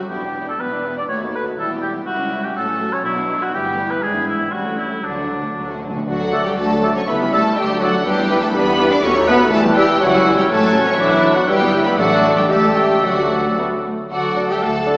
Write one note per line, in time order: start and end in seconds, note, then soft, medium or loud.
0.00 0.10 F#3 medium
0.00 0.10 F#4 medium
0.09 0.54 E1 medium
0.09 0.53 E2 medium
0.09 0.56 B3 soft
0.09 0.22 B3 soft
0.09 0.56 D4 soft
0.09 0.22 E4 soft
0.09 0.47 G4 medium
0.09 0.21 E5 soft
0.22 0.35 D4 soft
0.22 0.35 G4 soft
0.22 0.35 G5 soft
0.35 0.47 B3 soft
0.35 0.48 E4 soft
0.35 0.48 E5 soft
0.46 0.59 D4 soft
0.46 0.62 A4 medium
0.46 0.60 G5 soft
0.50 0.61 G4 soft
0.59 1.03 E1 medium
0.59 1.03 E2 medium
0.59 0.71 B3 soft
0.59 1.08 B3 medium
0.59 1.08 D4 medium
0.59 0.72 E4 soft
0.59 0.97 B4 medium
0.59 0.71 E5 soft
0.71 0.84 D4 soft
0.71 0.85 G4 soft
0.71 0.84 G5 soft
0.84 0.97 B3 soft
0.84 0.98 E4 soft
0.84 0.97 E5 soft
0.97 1.09 D4 soft
0.97 1.10 G4 soft
0.97 1.03 D5 medium
0.97 1.09 G5 soft
1.08 1.52 D#2 medium
1.08 1.57 A3 medium
1.08 1.21 A3 soft
1.08 1.58 F#4 medium
1.08 1.22 F#4 medium
1.08 1.20 C#5 medium
1.08 1.20 B5 soft
1.21 1.34 B3 soft
1.21 1.34 D#4 soft
1.21 1.34 A5 soft
1.34 1.46 A3 soft
1.34 1.47 F#4 soft
1.34 1.46 B4 medium
1.34 1.46 B5 soft
1.46 1.59 B3 soft
1.46 1.58 D#4 soft
1.46 1.58 A5 soft
1.57 2.01 E1 medium
1.57 2.01 E2 medium
1.57 2.06 G3 medium
1.57 1.70 G3 soft
1.57 2.06 E4 medium
1.57 1.70 E4 medium
1.57 1.70 A4 medium
1.57 1.70 E5 soft
1.70 1.83 B3 soft
1.70 1.83 G4 soft
1.70 1.83 G5 soft
1.82 1.94 G3 soft
1.82 1.95 E4 soft
1.82 1.93 G4 medium
1.82 1.95 E5 medium
1.95 2.07 B3 soft
1.95 2.07 G4 soft
1.95 2.07 G5 soft
2.06 2.49 C#2 medium
2.06 2.52 G3 medium
2.06 2.18 E4 medium
2.06 2.52 E4 medium
2.06 2.46 F#4 medium
2.06 2.19 E5 medium
2.19 2.31 C#4 soft
2.19 2.31 G4 medium
2.19 2.32 G5 soft
2.31 2.43 E4 soft
2.31 2.43 E5 medium
2.43 2.55 C#4 medium
2.43 2.55 G4 medium
2.43 2.56 G4 medium
2.43 2.55 G5 medium
2.55 2.98 A1 medium
2.55 2.98 A2 medium
2.55 3.52 F#3 medium
2.55 2.66 A3 medium
2.55 3.03 C#4 medium
2.55 2.66 F#4 medium
2.55 2.95 A4 medium
2.55 2.66 A5 medium
2.67 2.79 C#4 medium
2.67 2.79 A4 soft
2.67 2.80 F#5 medium
2.79 2.91 A3 medium
2.79 2.91 F#4 medium
2.79 2.92 A5 medium
2.91 3.03 C#4 medium
2.91 3.03 A4 medium
2.91 3.04 C#5 medium
2.91 3.04 F#5 soft
3.03 3.46 B1 medium
3.03 3.47 B2 medium
3.03 3.15 F#3 medium
3.03 3.15 D4 medium
3.03 3.52 D4 medium
3.03 3.44 E4 medium
3.03 3.15 D5 medium
3.15 3.28 B3 medium
3.15 3.27 F#4 medium
3.15 3.29 F#5 medium
3.26 3.40 F#3 medium
3.26 3.39 D4 medium
3.26 3.40 D5 medium
3.39 3.52 B3 medium
3.39 3.52 F#4 medium
3.39 3.54 F#4 medium
3.39 3.52 F#5 medium
3.51 3.95 G1 medium
3.51 3.95 G2 medium
3.51 4.01 E3 medium
3.51 3.64 G3 medium
3.51 3.63 E4 medium
3.51 4.02 E4 medium
3.51 3.92 G4 medium
3.51 3.63 G5 medium
3.63 3.77 B3 medium
3.63 3.76 G4 medium
3.63 3.77 E5 medium
3.76 3.89 G3 medium
3.76 3.89 E4 medium
3.76 3.90 G5 medium
3.88 4.02 B3 medium
3.88 4.01 G4 soft
3.88 4.04 B4 medium
3.88 4.01 E5 medium
4.00 4.45 G#1 medium
4.00 4.46 G#2 medium
4.00 4.48 E3 medium
4.00 4.13 G#3 medium
4.00 4.12 D4 medium
4.00 4.48 D4 medium
4.00 4.27 G#4 medium
4.00 4.13 D5 medium
4.12 4.27 B3 medium
4.12 4.25 E4 medium
4.12 4.27 E5 medium
4.24 4.39 G#3 medium
4.24 4.38 D4 medium
4.24 4.53 E4 medium
4.24 4.39 D5 medium
4.38 4.52 B3 medium
4.38 4.51 E4 medium
4.38 4.52 E5 medium
4.51 4.97 A1 medium
4.51 4.97 A2 medium
4.51 5.03 G3 medium
4.51 4.63 G3 medium
4.51 5.03 C#4 medium
4.51 4.63 C#4 medium
4.51 4.77 F#4 medium
4.51 4.64 A5 medium
4.63 4.77 A3 medium
4.63 4.77 E4 soft
4.63 4.78 G5 soft
4.76 4.90 G3 soft
4.76 4.90 C#4 soft
4.76 5.06 E4 medium
4.76 4.91 A5 soft
4.89 5.03 A3 soft
4.89 5.03 E4 soft
4.89 5.04 G5 soft
5.01 5.49 D2 medium
5.01 5.49 D3 medium
5.01 5.11 D3 soft
5.01 5.81 F#3 medium
5.01 5.15 F#3 soft
5.01 5.81 D4 medium
5.01 5.15 D4 medium
5.01 5.82 D4 medium
5.01 5.16 A5 medium
5.12 5.18 D3 soft
5.17 5.26 D3 soft
5.17 5.30 A3 soft
5.17 5.30 F#4 soft
5.17 5.30 F#5 soft
5.27 5.34 D3 soft
5.27 5.43 F#3 soft
5.27 5.42 D4 soft
5.32 5.41 D3 soft
5.32 5.44 A5 medium
5.43 5.49 D3 soft
5.43 5.56 A3 soft
5.43 5.55 F#4 soft
5.43 5.56 F#5 medium
5.50 5.57 D3 medium
5.54 6.01 D2 medium
5.54 6.01 D3 medium
5.54 5.64 D3 medium
5.54 5.68 F#3 soft
5.54 5.67 D4 soft
5.54 5.68 A5 soft
5.66 5.73 D3 medium
5.66 5.82 A3 soft
5.66 5.81 F#4 soft
5.70 5.80 D3 medium
5.70 5.82 F#5 soft
5.80 5.88 D3 medium
5.80 5.95 F#3 medium
5.80 5.94 D4 soft
5.80 5.96 A5 soft
5.89 5.96 D3 medium
5.93 6.04 D3 medium
5.93 6.05 A3 soft
5.93 6.05 F#4 soft
5.93 6.08 F#5 soft
6.06 6.52 D2 medium
6.06 6.42 F#3 medium
6.06 6.54 F#3 medium
6.06 6.18 A3 medium
6.06 6.54 D4 medium
6.06 6.42 F#4 medium
6.06 6.18 F#4 medium
6.06 7.04 D5 loud
6.06 6.43 F#5 loud
6.21 6.33 F#3 medium
6.21 6.33 A4 medium
6.32 6.42 A3 medium
6.32 6.46 A3 medium
6.32 6.45 F#4 medium
6.32 6.41 A4 medium
6.32 6.44 D6 medium
6.44 6.58 F#3 medium
6.44 6.57 G3 medium
6.44 6.57 G4 medium
6.44 6.58 A4 medium
6.44 6.59 G5 loud
6.56 7.02 D2 medium
6.56 7.08 F#3 medium
6.56 6.95 A3 medium
6.56 6.70 A3 medium
6.56 7.08 D4 medium
6.56 6.70 F#4 medium
6.56 6.94 A4 medium
6.56 6.96 A5 loud
6.71 6.83 F#3 medium
6.71 6.84 A4 medium
6.82 6.92 A3 medium
6.82 6.96 A3 medium
6.82 6.96 F#4 medium
6.82 6.92 A4 medium
6.82 6.94 D6 medium
6.95 7.08 F#3 medium
6.95 7.00 C#4 medium
6.95 7.09 A4 medium
6.95 7.00 C#5 medium
6.95 7.09 C#6 loud
7.07 7.51 C#2 medium
7.07 7.57 G3 medium
7.07 7.20 A3 medium
7.07 7.32 B3 medium
7.07 7.58 E4 medium
7.07 7.20 E4 medium
7.07 7.15 B4 medium
7.07 7.59 E5 loud
7.07 7.33 B5 loud
7.22 7.33 G3 medium
7.22 7.34 C#4 medium
7.32 7.41 G3 medium
7.32 7.57 A3 medium
7.32 7.46 A3 medium
7.32 7.46 E4 medium
7.32 7.56 A4 medium
7.32 7.42 A4 medium
7.32 7.57 A5 loud
7.32 7.44 E6 medium
7.46 7.58 G3 medium
7.46 7.58 C#4 medium
7.57 8.00 D2 medium
7.57 7.81 G3 loud
7.57 8.06 A3 medium
7.57 7.70 A3 medium
7.57 8.04 D4 medium
7.57 7.70 D4 medium
7.57 7.81 G4 loud
7.57 8.05 D5 medium
7.57 7.82 G5 loud
7.72 7.83 F#3 medium
7.72 7.83 F#4 medium
7.81 7.90 F#3 medium
7.81 8.06 F#3 medium
7.81 7.95 A3 medium
7.81 7.94 D4 medium
7.81 8.05 F#4 medium
7.81 7.91 A4 medium
7.81 8.06 F#5 loud
7.81 7.93 D6 medium
7.95 8.06 F#3 medium
7.95 8.06 F#4 medium
8.05 8.48 E2 medium
8.05 8.41 G3 loud
8.05 8.18 G3 medium
8.05 8.54 B3 medium
8.05 8.53 D4 medium
8.05 8.18 D4 medium
8.05 8.41 G4 loud
8.05 8.53 B4 loud
8.05 8.42 G5 loud
8.19 8.31 B3 medium
8.19 8.31 E4 medium
8.30 8.39 E3 medium
8.30 8.43 G3 medium
8.30 8.43 D4 medium
8.30 8.39 B4 medium
8.30 8.41 D6 medium
8.41 8.47 A3 medium
8.41 8.55 B3 medium
8.41 8.55 E4 medium
8.41 8.54 A4 loud
8.41 8.55 A5 loud
8.52 8.97 E2 loud
8.52 8.66 G3 medium
8.52 8.90 B3 loud
8.52 9.03 B3 loud
8.52 9.02 D4 medium
8.52 8.66 D4 medium
8.52 9.01 G4 loud
8.52 8.90 B4 loud
8.52 8.89 B5 loud
8.67 8.79 B3 medium
8.67 8.79 E4 medium
8.78 8.88 E3 medium
8.78 8.91 G3 medium
8.78 8.91 D4 medium
8.78 8.88 B4 medium
8.78 8.90 D6 medium
8.91 9.04 B3 medium
8.91 9.03 D4 loud
8.91 9.03 E4 medium
8.91 9.04 D5 loud
8.91 9.04 D6 loud
9.02 9.46 D#2 loud
9.02 9.52 A3 loud
9.02 9.15 B3 medium
9.02 9.11 C#4 loud
9.02 9.52 F#4 medium
9.02 9.15 F#4 medium
9.02 9.53 A4 loud
9.02 9.28 C#5 loud
9.02 9.27 C#6 loud
9.17 9.28 A3 medium
9.17 9.28 D#4 medium
9.26 9.36 A3 medium
9.26 9.51 B3 loud
9.26 9.41 B3 medium
9.26 9.40 F#4 medium
9.26 9.36 B4 loud
9.26 9.52 B4 loud
9.26 9.51 B5 loud
9.26 9.39 F#6 loud
9.41 9.53 A3 medium
9.41 9.53 D#4 medium
9.51 9.95 E2 loud
9.51 9.64 E3 medium
9.51 9.99 G3 loud
9.51 9.76 A3 loud
9.51 10.00 E4 loud
9.51 9.64 E4 medium
9.51 9.61 A4 loud
9.51 9.99 B4 loud
9.51 9.76 A5 loud
9.65 9.77 G3 medium
9.65 9.77 G4 medium
9.76 9.89 E3 medium
9.76 10.01 G3 loud
9.76 9.85 G3 loud
9.76 9.89 E4 medium
9.76 10.01 G4 loud
9.76 9.85 B4 medium
9.76 10.01 G5 loud
9.76 9.88 E6 loud
9.90 10.01 G3 medium
9.90 10.02 G4 medium
10.00 10.44 C#2 loud
10.00 10.13 E3 medium
10.00 10.37 F#3 loud
10.00 10.46 G3 medium
10.00 10.51 G3 medium
10.00 10.47 E4 medium
10.00 10.13 E4 medium
10.00 10.38 F#4 loud
10.00 11.45 C#5 loud
10.00 11.02 C#5 medium
10.00 10.38 F#5 loud
10.00 10.46 E6 medium
10.15 10.26 G3 medium
10.15 10.26 C#4 medium
10.27 10.38 E3 medium
10.27 10.39 E4 medium
10.38 10.43 G3 medium
10.38 10.51 G3 medium
10.38 10.50 C#4 medium
10.38 10.43 G4 medium
10.38 10.50 G5 loud
10.49 10.94 A1 loud
10.49 11.48 F#3 loud
10.49 11.49 F#3 loud
10.49 10.86 A3 loud
10.49 10.62 A3 medium
10.49 10.99 C#4 loud
10.49 10.62 C#4 medium
10.49 10.87 A4 loud
10.49 10.87 A5 loud
10.49 11.48 F#6 loud
10.63 10.75 F#3 medium
10.63 10.74 A3 medium
10.75 10.87 A3 medium
10.75 10.87 C#4 medium
10.86 10.99 F#3 medium
10.86 11.00 A3 medium
10.86 10.99 C#4 loud
10.86 10.99 C#5 loud
10.86 10.99 C#6 loud
10.97 11.43 B1 loud
10.97 11.11 D3 medium
10.97 11.35 E3 loud
10.97 11.49 D4 medium
10.97 11.11 D4 medium
10.97 11.35 E4 loud
10.97 11.49 D5 medium
10.97 11.35 E5 loud
11.12 11.24 F#3 medium
11.12 11.24 B3 medium
11.24 11.37 D3 medium
11.24 11.37 D4 medium
11.35 11.48 F#3 medium
11.35 11.49 F#3 medium
11.35 11.49 B3 medium
11.35 11.49 F#4 medium
11.35 11.49 F#5 loud
11.47 11.93 G1 loud
11.47 11.85 G3 loud
11.47 11.98 G3 medium
11.47 11.99 G3 loud
11.47 11.61 G3 medium
11.47 11.99 E4 loud
11.47 11.61 E4 medium
11.47 11.85 G4 loud
11.47 11.99 B4 medium
11.47 11.98 B4 loud
11.47 11.85 G5 loud
11.47 11.98 E6 medium
11.62 11.74 B3 medium
11.62 11.74 G4 medium
11.75 11.87 G3 medium
11.75 11.87 E4 medium
11.85 11.98 B3 loud
11.85 11.99 B3 medium
11.85 11.99 G4 medium
11.85 11.91 B4 loud
11.85 11.98 B5 loud
11.98 12.47 A1 medium
11.98 12.47 A2 loud
11.98 12.37 F#3 loud
11.98 12.47 A3 medium
11.98 12.52 A3 loud
11.98 12.47 A3 medium
11.98 12.47 D4 medium
11.98 12.36 F#4 loud
11.98 12.48 A4 medium
11.98 12.53 D5 loud
11.98 12.37 F#5 loud
11.98 12.47 D6 medium
12.36 12.42 G3 medium
12.36 12.50 G4 medium
12.36 12.43 G5 loud
12.48 13.03 C#2 loud
12.48 13.05 G3 medium
12.48 13.02 A3 loud
12.48 12.76 A3 loud
12.48 13.04 A3 medium
12.48 13.04 G4 medium
12.48 13.05 G4 medium
12.48 12.75 A4 medium
12.48 13.04 A4 medium
12.48 13.05 E5 loud
12.48 12.77 A5 loud
12.48 13.04 E6 medium
12.75 12.84 G3 medium
12.75 13.04 G4 medium
12.75 13.04 G5 loud
13.03 13.91 D2 medium
13.03 13.58 F#3 medium
13.03 13.86 F#3 medium
13.03 13.84 A3 medium
13.03 13.53 A3 medium
13.03 13.57 F#4 medium
13.03 13.86 F#4 medium
13.03 13.54 F#4 medium
13.03 13.85 A4 medium
13.03 13.86 D5 loud
13.03 13.59 F#5 loud
13.03 13.86 D6 medium
13.59 13.67 B3 medium
13.87 13.95 A3 medium
14.11 14.57 D2 medium
14.11 14.47 F#3 medium
14.11 14.47 F#4 loud
14.11 14.48 F#4 medium
14.11 14.97 A4 medium
14.11 14.53 D5 medium
14.11 14.47 F#5 medium
14.11 14.48 F#5 loud
14.36 14.46 D4 medium
14.36 14.47 A4 medium
14.49 14.63 G3 medium
14.49 14.62 G4 medium
14.49 14.63 G4 medium
14.49 14.64 E5 medium
14.49 14.63 G5 medium
14.49 14.64 G5 loud
14.62 14.97 D2 medium
14.62 14.97 A3 medium
14.62 14.97 A4 medium
14.62 14.97 A4 loud
14.62 14.97 F#5 loud
14.62 14.97 A5 loud
14.87 14.96 D4 medium
14.87 14.96 A4 medium